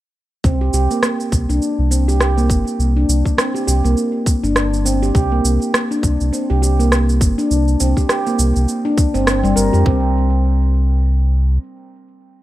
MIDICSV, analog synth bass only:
0, 0, Header, 1, 2, 480
1, 0, Start_track
1, 0, Tempo, 588235
1, 364, Time_signature, 4, 2, 24, 8
1, 10142, End_track
2, 0, Start_track
2, 0, Title_t, "Analog synth bass"
2, 0, Program_c, 0, 38
2, 361, Note_on_c, 0, 36, 93
2, 571, Note_off_c, 0, 36, 0
2, 598, Note_on_c, 0, 36, 82
2, 718, Note_off_c, 0, 36, 0
2, 1079, Note_on_c, 0, 36, 73
2, 1198, Note_off_c, 0, 36, 0
2, 1218, Note_on_c, 0, 36, 76
2, 1305, Note_off_c, 0, 36, 0
2, 1458, Note_on_c, 0, 36, 82
2, 2038, Note_on_c, 0, 31, 74
2, 2050, Note_off_c, 0, 36, 0
2, 2158, Note_off_c, 0, 31, 0
2, 2279, Note_on_c, 0, 36, 99
2, 2490, Note_off_c, 0, 36, 0
2, 2519, Note_on_c, 0, 36, 85
2, 2638, Note_off_c, 0, 36, 0
2, 3000, Note_on_c, 0, 36, 75
2, 3119, Note_off_c, 0, 36, 0
2, 3138, Note_on_c, 0, 36, 83
2, 3226, Note_off_c, 0, 36, 0
2, 3617, Note_on_c, 0, 31, 94
2, 4176, Note_off_c, 0, 31, 0
2, 4201, Note_on_c, 0, 36, 101
2, 4411, Note_off_c, 0, 36, 0
2, 4442, Note_on_c, 0, 36, 87
2, 4560, Note_off_c, 0, 36, 0
2, 4924, Note_on_c, 0, 36, 80
2, 5041, Note_off_c, 0, 36, 0
2, 5067, Note_on_c, 0, 36, 82
2, 5150, Note_off_c, 0, 36, 0
2, 5307, Note_on_c, 0, 36, 82
2, 5885, Note_on_c, 0, 31, 75
2, 5897, Note_off_c, 0, 36, 0
2, 6001, Note_off_c, 0, 31, 0
2, 6128, Note_on_c, 0, 36, 101
2, 6334, Note_off_c, 0, 36, 0
2, 6372, Note_on_c, 0, 36, 80
2, 6485, Note_off_c, 0, 36, 0
2, 6846, Note_on_c, 0, 36, 76
2, 6962, Note_off_c, 0, 36, 0
2, 6986, Note_on_c, 0, 36, 86
2, 7070, Note_off_c, 0, 36, 0
2, 7462, Note_on_c, 0, 31, 101
2, 7697, Note_off_c, 0, 31, 0
2, 7702, Note_on_c, 0, 31, 93
2, 7788, Note_off_c, 0, 31, 0
2, 7805, Note_on_c, 0, 31, 74
2, 7922, Note_off_c, 0, 31, 0
2, 7943, Note_on_c, 0, 41, 101
2, 8028, Note_off_c, 0, 41, 0
2, 8047, Note_on_c, 0, 36, 98
2, 9453, Note_off_c, 0, 36, 0
2, 10142, End_track
0, 0, End_of_file